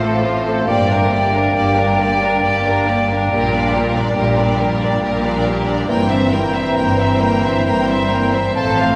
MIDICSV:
0, 0, Header, 1, 10, 480
1, 0, Start_track
1, 0, Tempo, 879765
1, 363, Time_signature, 3, 2, 24, 8
1, 1812, Tempo, 857143
1, 3252, Tempo, 887574
1, 4909, End_track
2, 0, Start_track
2, 0, Title_t, "Flute"
2, 0, Program_c, 0, 73
2, 0, Note_on_c, 0, 77, 62
2, 342, Note_off_c, 0, 77, 0
2, 366, Note_on_c, 0, 79, 64
2, 3095, Note_off_c, 0, 79, 0
2, 3253, Note_on_c, 0, 82, 59
2, 4693, Note_on_c, 0, 81, 58
2, 4701, Note_off_c, 0, 82, 0
2, 4909, Note_off_c, 0, 81, 0
2, 4909, End_track
3, 0, Start_track
3, 0, Title_t, "Violin section"
3, 0, Program_c, 1, 48
3, 18, Note_on_c, 1, 69, 56
3, 131, Note_off_c, 1, 69, 0
3, 135, Note_on_c, 1, 72, 48
3, 248, Note_off_c, 1, 72, 0
3, 250, Note_on_c, 1, 69, 46
3, 366, Note_off_c, 1, 69, 0
3, 373, Note_on_c, 1, 74, 58
3, 480, Note_off_c, 1, 74, 0
3, 491, Note_on_c, 1, 70, 52
3, 607, Note_off_c, 1, 70, 0
3, 609, Note_on_c, 1, 74, 52
3, 727, Note_off_c, 1, 74, 0
3, 732, Note_on_c, 1, 70, 52
3, 848, Note_on_c, 1, 74, 55
3, 849, Note_off_c, 1, 70, 0
3, 960, Note_off_c, 1, 74, 0
3, 966, Note_on_c, 1, 70, 51
3, 1088, Note_off_c, 1, 70, 0
3, 1094, Note_on_c, 1, 74, 60
3, 1212, Note_on_c, 1, 70, 56
3, 1213, Note_off_c, 1, 74, 0
3, 1328, Note_on_c, 1, 74, 54
3, 1334, Note_off_c, 1, 70, 0
3, 1443, Note_off_c, 1, 74, 0
3, 1449, Note_on_c, 1, 70, 53
3, 1571, Note_on_c, 1, 74, 49
3, 1573, Note_off_c, 1, 70, 0
3, 1693, Note_off_c, 1, 74, 0
3, 1695, Note_on_c, 1, 70, 51
3, 1804, Note_off_c, 1, 70, 0
3, 1811, Note_on_c, 1, 70, 61
3, 1923, Note_off_c, 1, 70, 0
3, 1933, Note_on_c, 1, 74, 56
3, 2048, Note_on_c, 1, 70, 53
3, 2052, Note_off_c, 1, 74, 0
3, 2164, Note_on_c, 1, 74, 49
3, 2168, Note_off_c, 1, 70, 0
3, 2284, Note_on_c, 1, 70, 49
3, 2286, Note_off_c, 1, 74, 0
3, 2398, Note_off_c, 1, 70, 0
3, 2405, Note_on_c, 1, 74, 50
3, 2523, Note_on_c, 1, 70, 57
3, 2528, Note_off_c, 1, 74, 0
3, 2645, Note_on_c, 1, 74, 55
3, 2649, Note_off_c, 1, 70, 0
3, 2768, Note_on_c, 1, 70, 59
3, 2770, Note_off_c, 1, 74, 0
3, 2882, Note_off_c, 1, 70, 0
3, 2888, Note_on_c, 1, 74, 56
3, 3004, Note_on_c, 1, 70, 52
3, 3010, Note_off_c, 1, 74, 0
3, 3125, Note_on_c, 1, 74, 50
3, 3128, Note_off_c, 1, 70, 0
3, 3246, Note_on_c, 1, 79, 61
3, 3249, Note_off_c, 1, 74, 0
3, 3358, Note_off_c, 1, 79, 0
3, 3358, Note_on_c, 1, 76, 54
3, 3479, Note_on_c, 1, 79, 52
3, 3483, Note_off_c, 1, 76, 0
3, 3599, Note_on_c, 1, 76, 54
3, 3605, Note_off_c, 1, 79, 0
3, 3721, Note_on_c, 1, 79, 52
3, 3725, Note_off_c, 1, 76, 0
3, 3838, Note_off_c, 1, 79, 0
3, 3845, Note_on_c, 1, 76, 50
3, 3965, Note_on_c, 1, 79, 57
3, 3970, Note_off_c, 1, 76, 0
3, 4084, Note_on_c, 1, 76, 53
3, 4090, Note_off_c, 1, 79, 0
3, 4206, Note_on_c, 1, 79, 54
3, 4210, Note_off_c, 1, 76, 0
3, 4322, Note_off_c, 1, 79, 0
3, 4328, Note_on_c, 1, 76, 55
3, 4445, Note_on_c, 1, 79, 48
3, 4451, Note_off_c, 1, 76, 0
3, 4565, Note_on_c, 1, 76, 53
3, 4569, Note_off_c, 1, 79, 0
3, 4689, Note_off_c, 1, 76, 0
3, 4691, Note_on_c, 1, 81, 57
3, 4803, Note_off_c, 1, 81, 0
3, 4810, Note_on_c, 1, 77, 49
3, 4909, Note_off_c, 1, 77, 0
3, 4909, End_track
4, 0, Start_track
4, 0, Title_t, "Clarinet"
4, 0, Program_c, 2, 71
4, 0, Note_on_c, 2, 72, 66
4, 342, Note_off_c, 2, 72, 0
4, 366, Note_on_c, 2, 74, 68
4, 3095, Note_off_c, 2, 74, 0
4, 3247, Note_on_c, 2, 72, 63
4, 4909, Note_off_c, 2, 72, 0
4, 4909, End_track
5, 0, Start_track
5, 0, Title_t, "Violin section"
5, 0, Program_c, 3, 48
5, 10, Note_on_c, 3, 69, 50
5, 127, Note_off_c, 3, 69, 0
5, 133, Note_on_c, 3, 65, 49
5, 239, Note_on_c, 3, 69, 49
5, 247, Note_off_c, 3, 65, 0
5, 359, Note_on_c, 3, 67, 56
5, 360, Note_off_c, 3, 69, 0
5, 472, Note_off_c, 3, 67, 0
5, 482, Note_on_c, 3, 70, 53
5, 603, Note_off_c, 3, 70, 0
5, 608, Note_on_c, 3, 67, 50
5, 727, Note_off_c, 3, 67, 0
5, 727, Note_on_c, 3, 70, 51
5, 847, Note_off_c, 3, 70, 0
5, 854, Note_on_c, 3, 67, 52
5, 963, Note_off_c, 3, 67, 0
5, 972, Note_on_c, 3, 70, 50
5, 1091, Note_off_c, 3, 70, 0
5, 1093, Note_on_c, 3, 67, 50
5, 1213, Note_off_c, 3, 67, 0
5, 1214, Note_on_c, 3, 70, 52
5, 1334, Note_off_c, 3, 70, 0
5, 1335, Note_on_c, 3, 67, 59
5, 1447, Note_off_c, 3, 67, 0
5, 1458, Note_on_c, 3, 70, 52
5, 1574, Note_on_c, 3, 67, 49
5, 1577, Note_off_c, 3, 70, 0
5, 1692, Note_on_c, 3, 70, 50
5, 1695, Note_off_c, 3, 67, 0
5, 1812, Note_off_c, 3, 70, 0
5, 1816, Note_on_c, 3, 67, 62
5, 1926, Note_off_c, 3, 67, 0
5, 1937, Note_on_c, 3, 70, 53
5, 2049, Note_on_c, 3, 67, 56
5, 2054, Note_off_c, 3, 70, 0
5, 2164, Note_on_c, 3, 70, 50
5, 2169, Note_off_c, 3, 67, 0
5, 2282, Note_on_c, 3, 67, 58
5, 2286, Note_off_c, 3, 70, 0
5, 2397, Note_off_c, 3, 67, 0
5, 2408, Note_on_c, 3, 70, 53
5, 2529, Note_on_c, 3, 67, 54
5, 2530, Note_off_c, 3, 70, 0
5, 2651, Note_off_c, 3, 67, 0
5, 2657, Note_on_c, 3, 70, 52
5, 2768, Note_on_c, 3, 67, 57
5, 2776, Note_off_c, 3, 70, 0
5, 2883, Note_off_c, 3, 67, 0
5, 2890, Note_on_c, 3, 70, 57
5, 3011, Note_off_c, 3, 70, 0
5, 3015, Note_on_c, 3, 67, 56
5, 3133, Note_off_c, 3, 67, 0
5, 3133, Note_on_c, 3, 70, 53
5, 3243, Note_off_c, 3, 70, 0
5, 3250, Note_on_c, 3, 70, 53
5, 3360, Note_off_c, 3, 70, 0
5, 3365, Note_on_c, 3, 72, 52
5, 3481, Note_on_c, 3, 70, 58
5, 3487, Note_off_c, 3, 72, 0
5, 3599, Note_on_c, 3, 72, 53
5, 3605, Note_off_c, 3, 70, 0
5, 3720, Note_on_c, 3, 70, 57
5, 3726, Note_off_c, 3, 72, 0
5, 3838, Note_off_c, 3, 70, 0
5, 3845, Note_on_c, 3, 72, 51
5, 3965, Note_on_c, 3, 70, 56
5, 3969, Note_off_c, 3, 72, 0
5, 4087, Note_on_c, 3, 72, 52
5, 4090, Note_off_c, 3, 70, 0
5, 4210, Note_on_c, 3, 70, 54
5, 4211, Note_off_c, 3, 72, 0
5, 4324, Note_off_c, 3, 70, 0
5, 4329, Note_on_c, 3, 72, 51
5, 4451, Note_off_c, 3, 72, 0
5, 4453, Note_on_c, 3, 70, 50
5, 4571, Note_on_c, 3, 72, 50
5, 4573, Note_off_c, 3, 70, 0
5, 4692, Note_off_c, 3, 72, 0
5, 4692, Note_on_c, 3, 69, 55
5, 4804, Note_off_c, 3, 69, 0
5, 4817, Note_on_c, 3, 72, 47
5, 4909, Note_off_c, 3, 72, 0
5, 4909, End_track
6, 0, Start_track
6, 0, Title_t, "Viola section"
6, 0, Program_c, 4, 48
6, 9, Note_on_c, 4, 60, 52
6, 125, Note_on_c, 4, 57, 53
6, 127, Note_off_c, 4, 60, 0
6, 244, Note_off_c, 4, 57, 0
6, 246, Note_on_c, 4, 60, 51
6, 364, Note_off_c, 4, 60, 0
6, 364, Note_on_c, 4, 58, 59
6, 475, Note_off_c, 4, 58, 0
6, 483, Note_on_c, 4, 62, 52
6, 603, Note_off_c, 4, 62, 0
6, 603, Note_on_c, 4, 58, 51
6, 724, Note_off_c, 4, 58, 0
6, 728, Note_on_c, 4, 62, 50
6, 847, Note_off_c, 4, 62, 0
6, 849, Note_on_c, 4, 58, 54
6, 960, Note_off_c, 4, 58, 0
6, 968, Note_on_c, 4, 62, 54
6, 1087, Note_on_c, 4, 58, 61
6, 1089, Note_off_c, 4, 62, 0
6, 1210, Note_off_c, 4, 58, 0
6, 1210, Note_on_c, 4, 62, 54
6, 1331, Note_on_c, 4, 58, 51
6, 1332, Note_off_c, 4, 62, 0
6, 1445, Note_off_c, 4, 58, 0
6, 1452, Note_on_c, 4, 62, 55
6, 1573, Note_on_c, 4, 58, 54
6, 1574, Note_off_c, 4, 62, 0
6, 1694, Note_off_c, 4, 58, 0
6, 1696, Note_on_c, 4, 62, 53
6, 1814, Note_off_c, 4, 62, 0
6, 1814, Note_on_c, 4, 58, 66
6, 1925, Note_off_c, 4, 58, 0
6, 1933, Note_on_c, 4, 62, 58
6, 2050, Note_on_c, 4, 58, 56
6, 2052, Note_off_c, 4, 62, 0
6, 2169, Note_off_c, 4, 58, 0
6, 2169, Note_on_c, 4, 62, 56
6, 2286, Note_on_c, 4, 58, 54
6, 2288, Note_off_c, 4, 62, 0
6, 2399, Note_off_c, 4, 58, 0
6, 2410, Note_on_c, 4, 62, 53
6, 2527, Note_on_c, 4, 58, 59
6, 2531, Note_off_c, 4, 62, 0
6, 2650, Note_off_c, 4, 58, 0
6, 2650, Note_on_c, 4, 62, 53
6, 2767, Note_on_c, 4, 58, 57
6, 2773, Note_off_c, 4, 62, 0
6, 2882, Note_off_c, 4, 58, 0
6, 2889, Note_on_c, 4, 62, 53
6, 3007, Note_on_c, 4, 58, 53
6, 3011, Note_off_c, 4, 62, 0
6, 3125, Note_on_c, 4, 62, 55
6, 3130, Note_off_c, 4, 58, 0
6, 3249, Note_off_c, 4, 62, 0
6, 3250, Note_on_c, 4, 58, 64
6, 3361, Note_off_c, 4, 58, 0
6, 3370, Note_on_c, 4, 60, 55
6, 3489, Note_off_c, 4, 60, 0
6, 3493, Note_on_c, 4, 58, 55
6, 3611, Note_off_c, 4, 58, 0
6, 3611, Note_on_c, 4, 60, 58
6, 3731, Note_off_c, 4, 60, 0
6, 3731, Note_on_c, 4, 58, 48
6, 3844, Note_off_c, 4, 58, 0
6, 3853, Note_on_c, 4, 60, 53
6, 3973, Note_on_c, 4, 58, 60
6, 3974, Note_off_c, 4, 60, 0
6, 4093, Note_on_c, 4, 60, 56
6, 4094, Note_off_c, 4, 58, 0
6, 4214, Note_off_c, 4, 60, 0
6, 4215, Note_on_c, 4, 58, 59
6, 4327, Note_off_c, 4, 58, 0
6, 4333, Note_on_c, 4, 60, 51
6, 4452, Note_on_c, 4, 58, 52
6, 4454, Note_off_c, 4, 60, 0
6, 4570, Note_on_c, 4, 60, 53
6, 4573, Note_off_c, 4, 58, 0
6, 4691, Note_off_c, 4, 60, 0
6, 4692, Note_on_c, 4, 57, 57
6, 4804, Note_off_c, 4, 57, 0
6, 4811, Note_on_c, 4, 60, 49
6, 4909, Note_off_c, 4, 60, 0
6, 4909, End_track
7, 0, Start_track
7, 0, Title_t, "French horn section"
7, 0, Program_c, 5, 60
7, 0, Note_on_c, 5, 57, 57
7, 0, Note_on_c, 5, 65, 60
7, 337, Note_off_c, 5, 65, 0
7, 338, Note_off_c, 5, 57, 0
7, 357, Note_on_c, 5, 62, 59
7, 361, Note_on_c, 5, 58, 64
7, 1719, Note_off_c, 5, 58, 0
7, 1812, Note_on_c, 5, 55, 62
7, 3227, Note_off_c, 5, 62, 0
7, 3230, Note_off_c, 5, 55, 0
7, 3254, Note_on_c, 5, 52, 61
7, 3254, Note_on_c, 5, 60, 63
7, 4693, Note_on_c, 5, 53, 55
7, 4694, Note_off_c, 5, 52, 0
7, 4909, Note_off_c, 5, 53, 0
7, 4909, Note_off_c, 5, 60, 0
7, 4909, End_track
8, 0, Start_track
8, 0, Title_t, "Bassoon"
8, 0, Program_c, 6, 70
8, 0, Note_on_c, 6, 57, 59
8, 363, Note_on_c, 6, 58, 55
8, 371, Note_off_c, 6, 57, 0
8, 1678, Note_off_c, 6, 58, 0
8, 1815, Note_on_c, 6, 55, 58
8, 3231, Note_off_c, 6, 55, 0
8, 3250, Note_on_c, 6, 52, 64
8, 4670, Note_off_c, 6, 52, 0
8, 4696, Note_on_c, 6, 53, 57
8, 4909, Note_off_c, 6, 53, 0
8, 4909, End_track
9, 0, Start_track
9, 0, Title_t, "Cello section"
9, 0, Program_c, 7, 48
9, 0, Note_on_c, 7, 45, 72
9, 310, Note_off_c, 7, 45, 0
9, 363, Note_on_c, 7, 43, 65
9, 788, Note_off_c, 7, 43, 0
9, 846, Note_on_c, 7, 43, 66
9, 1275, Note_off_c, 7, 43, 0
9, 1334, Note_on_c, 7, 43, 68
9, 1758, Note_off_c, 7, 43, 0
9, 1811, Note_on_c, 7, 46, 77
9, 2231, Note_off_c, 7, 46, 0
9, 2287, Note_on_c, 7, 46, 65
9, 2715, Note_off_c, 7, 46, 0
9, 2773, Note_on_c, 7, 46, 74
9, 3196, Note_off_c, 7, 46, 0
9, 3252, Note_on_c, 7, 43, 74
9, 3673, Note_off_c, 7, 43, 0
9, 3732, Note_on_c, 7, 43, 69
9, 4158, Note_off_c, 7, 43, 0
9, 4214, Note_on_c, 7, 43, 67
9, 4637, Note_off_c, 7, 43, 0
9, 4694, Note_on_c, 7, 45, 65
9, 4909, Note_off_c, 7, 45, 0
9, 4909, End_track
10, 0, Start_track
10, 0, Title_t, "Double bass section"
10, 0, Program_c, 8, 48
10, 0, Note_on_c, 8, 33, 61
10, 309, Note_off_c, 8, 33, 0
10, 367, Note_on_c, 8, 31, 70
10, 790, Note_off_c, 8, 31, 0
10, 846, Note_on_c, 8, 31, 70
10, 1275, Note_off_c, 8, 31, 0
10, 1334, Note_on_c, 8, 31, 63
10, 1758, Note_off_c, 8, 31, 0
10, 1811, Note_on_c, 8, 34, 73
10, 2232, Note_off_c, 8, 34, 0
10, 2287, Note_on_c, 8, 34, 67
10, 2715, Note_off_c, 8, 34, 0
10, 2772, Note_on_c, 8, 34, 70
10, 3195, Note_off_c, 8, 34, 0
10, 3252, Note_on_c, 8, 31, 71
10, 3674, Note_off_c, 8, 31, 0
10, 3731, Note_on_c, 8, 31, 71
10, 4158, Note_off_c, 8, 31, 0
10, 4215, Note_on_c, 8, 31, 67
10, 4637, Note_off_c, 8, 31, 0
10, 4694, Note_on_c, 8, 33, 66
10, 4909, Note_off_c, 8, 33, 0
10, 4909, End_track
0, 0, End_of_file